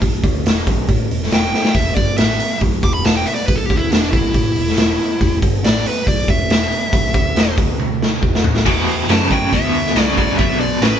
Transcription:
0.01 0.22 B1 medium
0.01 kick loud
0.01 open hi-hat medium
0.24 0.44 D2 medium
0.24 kick loud
0.24 open hi-hat medium
0.45 0.65 E1 medium
0.45 snare loud
0.45 open hi-hat medium
0.67 0.87 B1 medium
0.67 kick loud
0.67 open hi-hat medium
0.89 1.09 A1 loud
0.89 kick loud
0.89 open hi-hat medium
1.10 1.30 E1 medium
1.10 open hi-hat medium
1.23 snare soft
1.32 1.52 E1 medium
1.32 1.75 G5 loud
1.32 snare loud
1.32 open hi-hat medium
1.54 muted picked electric bass stroke soft
1.54 snare medium
1.65 snare loud
1.74 1.95 E1 medium
1.74 1.95 E5 medium
1.74 kick loud
1.74 open hi-hat medium
1.95 2.17 G1 medium
1.95 2.17 D5 medium
1.95 kick loud
1.95 open hi-hat medium
2.18 2.39 A1 medium
2.18 2.60 E5 medium
2.18 snare loud
2.18 open hi-hat medium
2.40 muted picked electric bass stroke soft
2.40 open hi-hat medium
2.61 2.81 B1 loud
2.61 kick medium
2.61 open hi-hat medium
2.83 3.03 E1 medium
2.83 2.94 D6 loud
2.83 kick loud
2.83 open hi-hat medium
2.94 3.05 B5 medium
3.05 3.26 E1 medium
3.05 3.15 A5 medium
3.05 snare loud
3.05 open hi-hat medium
3.16 3.27 G5 medium
3.26 3.34 E5 loud
3.26 open hi-hat medium
3.35 3.46 D5 medium
3.46 3.68 B1 medium
3.46 3.58 B4 medium
3.46 kick loud
3.46 open hi-hat medium
3.56 3.66 A4 medium
3.66 3.78 G4 medium
3.70 3.90 D2 medium
3.70 kick loud
3.70 open hi-hat medium
3.77 3.91 E4 medium
3.91 4.12 E1 medium
3.91 4.11 D4 medium
3.91 snare loud
3.91 open hi-hat medium
4.11 4.33 B1 medium
4.11 5.38 E4 loud
4.11 kick loud
4.11 open hi-hat medium
4.34 4.54 A1 loud
4.34 kick medium
4.34 open hi-hat medium
4.56 4.77 E1 medium
4.56 open hi-hat medium
4.68 snare soft
4.77 4.98 E1 loud
4.77 snare loud
4.77 open hi-hat medium
4.99 muted picked electric bass stroke soft
4.99 open hi-hat medium
5.20 5.41 E1 loud
5.20 kick loud
5.20 open hi-hat medium
5.42 5.63 G1 loud
5.42 kick loud
5.42 open hi-hat medium
5.64 5.85 A1 medium
5.64 5.85 D5 medium
5.64 snare loud
5.64 open hi-hat medium
5.86 6.07 B4 medium
5.86 muted picked electric bass stroke soft
5.86 open hi-hat medium
6.07 6.27 B1 loud
6.07 6.28 D5 loud
6.07 kick loud
6.07 open hi-hat medium
6.28 6.49 E1 medium
6.28 7.55 E5 loud
6.28 kick loud
6.28 open hi-hat medium
6.50 6.71 E1 medium
6.50 snare loud
6.50 open hi-hat medium
6.72 open hi-hat medium
6.93 7.13 B1 loud
6.93 kick loud
6.93 open hi-hat medium
7.14 7.34 D2 loud
7.14 kick loud
7.14 open hi-hat medium
7.36 7.57 E1 medium
7.36 snare loud
7.36 open hi-hat medium
7.58 8.19 D2 medium
7.58 kick loud
7.58 open hi-hat medium
7.80 high tom medium
8.02 snare medium
8.23 8.43 E1 loud
8.23 kick medium
8.35 snare medium
8.44 8.64 A1 loud
8.44 floor tom loud
8.56 snare medium
8.66 9.08 E2 medium
8.66 9.05 E2 medium
8.66 9.05 B2 medium
8.66 kick loud
8.66 crash loud
8.88 open hi-hat medium
9.09 9.29 E2 medium
9.09 9.51 F#2 medium
9.09 9.29 C#3 medium
9.09 9.31 A5 medium
9.09 snare loud
9.09 open hi-hat medium
9.31 9.51 E2 medium
9.31 9.51 C#3 medium
9.31 9.52 G5 medium
9.31 kick medium
9.31 open hi-hat medium
9.53 9.94 D2 medium
9.53 9.92 E2 medium
9.53 9.92 B2 medium
9.53 10.02 E5 medium
9.53 kick medium
9.53 open hi-hat medium
9.75 open hi-hat medium
9.86 snare soft
9.95 10.37 C2 loud
9.95 10.15 E2 medium
9.95 10.16 C#3 medium
9.95 snare loud
9.95 open hi-hat medium
10.02 10.16 D5 medium
10.17 10.37 E2 medium
10.17 10.37 C#3 medium
10.17 10.37 D5 medium
10.17 kick medium
10.17 open hi-hat medium
10.38 10.81 B1 medium
10.38 10.78 E2 medium
10.38 10.78 B2 medium
10.38 10.59 E5 loud
10.38 kick loud
10.38 open hi-hat medium
10.60 10.81 D5 medium
10.60 open hi-hat medium
10.82 11.00 A1 medium
10.82 11.00 E2 medium
10.82 11.00 C#3 medium
10.82 11.00 B4 medium
10.82 snare loud
10.82 open hi-hat medium

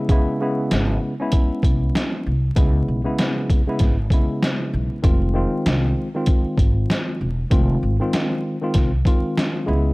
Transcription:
0.09 0.38 C#3 medium
0.09 0.38 G#3 medium
0.09 0.39 B3 medium
0.09 0.39 E4 loud
0.09 kick loud
0.09 closed hi-hat medium
0.40 1.13 C#3 medium
0.40 1.13 G#3 medium
0.40 1.13 B3 medium
0.40 1.14 E4 loud
0.71 0.96 G#1 loud
0.71 snare loud
0.71 closed hi-hat medium
1.20 2.32 G#3 medium
1.20 2.33 B3 medium
1.20 2.32 C#4 loud
1.20 2.33 E4 loud
1.32 kick medium
1.32 closed hi-hat medium
1.63 1.88 C2 medium
1.63 kick medium
1.63 closed hi-hat medium
1.95 snare loud
1.95 closed hi-hat medium
2.26 2.51 C2 medium
2.56 2.82 C#2 loud
2.56 3.00 C#3 medium
2.56 3.01 G#3 medium
2.56 3.01 B3 medium
2.56 3.02 E4 medium
2.56 kick loud
2.56 closed hi-hat medium
2.88 3.02 B1 medium
3.04 3.61 C#3 medium
3.04 3.61 G#3 medium
3.04 3.61 B3 medium
3.04 3.62 E4 medium
3.19 snare loud
3.19 closed hi-hat medium
3.50 kick medium
3.50 closed hi-hat medium
3.67 3.95 C#3 medium
3.67 3.95 G#3 medium
3.67 3.96 B3 medium
3.67 3.96 E4 loud
3.79 4.05 G#1 medium
3.79 kick medium
3.79 snare soft
3.79 closed hi-hat medium
4.10 4.98 C#3 medium
4.10 4.98 G#3 medium
4.10 4.98 B3 medium
4.10 4.99 E4 loud
4.10 kick medium
4.10 closed hi-hat medium
4.43 snare loud
4.43 closed hi-hat medium
4.74 4.88 B1 medium
5.02 5.43 F1 loud
5.02 5.32 D#3 medium
5.02 5.32 G#3 medium
5.02 5.33 C4 medium
5.02 5.33 F4 loud
5.02 kick loud
5.02 closed hi-hat medium
5.33 6.07 D#3 medium
5.33 6.07 G#3 medium
5.33 6.07 C4 medium
5.33 6.08 F4 medium
5.66 5.91 C2 medium
5.66 snare loud
5.66 closed hi-hat medium
6.14 7.27 D#3 medium
6.14 7.27 G#3 medium
6.14 7.27 C4 medium
6.14 7.28 F4 medium
6.26 kick medium
6.26 closed hi-hat medium
6.58 6.83 G#1 medium
6.58 kick medium
6.58 closed hi-hat medium
6.90 snare loud
6.90 closed hi-hat medium
7.21 7.46 E1 medium
7.50 7.76 F1 loud
7.50 7.95 D#3 medium
7.50 7.95 G#3 medium
7.50 7.96 C4 medium
7.50 7.96 F4 loud
7.50 kick loud
7.50 closed hi-hat medium
7.83 7.97 G#1 medium
8.00 8.56 D#3 loud
8.00 8.56 G#3 medium
8.00 8.57 C4 medium
8.00 8.57 F4 loud
8.13 snare loud
8.13 closed hi-hat medium
8.61 8.90 D#3 medium
8.61 8.90 G#3 medium
8.61 8.90 C4 medium
8.61 8.91 F4 loud
8.74 9.00 C2 loud
8.74 kick medium
8.74 snare soft
8.74 closed hi-hat medium
9.05 9.67 D#3 loud
9.05 9.65 G#3 medium
9.05 9.68 C4 medium
9.05 9.68 F4 loud
9.05 kick medium
9.05 closed hi-hat medium
9.37 snare loud
9.37 closed hi-hat medium
9.66 9.94 C#2 loud
9.66 9.94 C#3 loud
9.66 9.94 G#3 medium
9.66 9.94 B3 medium
9.66 9.94 E4 loud

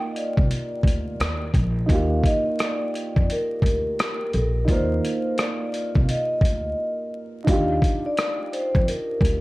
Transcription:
0.00 1.85 A#3 soft
0.00 1.84 D#4 medium
0.00 1.86 F4 soft
0.00 1.87 A#4 medium
0.12 0.16 D#5 medium
0.12 closed hi-hat medium
0.17 1.51 D5 medium
0.37 0.49 C2 medium
0.37 kick medium
0.51 closed hi-hat medium
0.83 1.14 D2 medium
0.83 kick medium
0.87 closed hi-hat medium
1.20 1.50 D#2 medium
1.20 cross-stick loud
1.20 closed hi-hat medium
1.54 1.84 A#1 medium
1.54 kick medium
1.54 closed hi-hat soft
1.86 2.19 D#2 loud
1.86 4.64 A#3 soft
1.86 4.63 D#4 medium
1.86 kick loud
1.86 closed hi-hat medium
1.91 4.65 F4 soft
1.91 4.66 G4 medium
1.91 2.26 F5 loud
2.24 2.61 D#5 loud
2.24 kick medium
2.24 closed hi-hat medium
2.59 3.32 D5 medium
2.59 cross-stick loud
2.59 closed hi-hat medium
2.95 closed hi-hat medium
3.16 3.28 F2 medium
3.16 kick medium
3.30 4.33 A#4 medium
3.30 closed hi-hat medium
3.62 3.93 D2 medium
3.62 kick medium
3.62 closed hi-hat medium
3.99 cross-stick loud
3.99 closed hi-hat medium
4.31 4.64 A#1 medium
4.31 4.35 A4 medium
4.31 closed hi-hat soft
4.37 4.65 A#4 medium
4.65 4.98 D#2 loud
4.65 7.43 A#3 soft
4.65 7.41 D#4 medium
4.65 4.70 D5 medium
4.65 kick loud
4.65 closed hi-hat medium
4.70 7.44 F4 medium
4.70 7.45 A#4 medium
4.70 5.41 C5 medium
5.05 closed hi-hat medium
5.38 5.99 D5 medium
5.38 cross-stick loud
5.38 closed hi-hat medium
5.74 closed hi-hat medium
5.95 6.07 C2 medium
5.95 kick medium
6.04 6.09 F5 medium
6.09 7.09 D#5 medium
6.09 closed hi-hat medium
6.41 6.72 D2 medium
6.41 kick medium
6.41 closed hi-hat medium
7.44 7.78 D#2 loud
7.44 9.41 D4 medium
7.44 9.41 D#4 medium
7.44 kick loud
7.44 closed hi-hat medium
7.49 9.41 F4 medium
7.49 9.41 G4 medium
7.49 8.07 F5 loud
7.82 kick loud
7.82 closed hi-hat medium
8.06 8.54 D5 loud
8.17 cross-stick loud
8.17 closed hi-hat medium
8.53 8.88 C5 medium
8.53 closed hi-hat medium
8.75 8.86 F2 medium
8.75 kick loud
8.88 9.41 A#4 medium
8.88 closed hi-hat medium
9.21 9.41 D2 medium
9.21 kick medium
9.25 closed hi-hat medium

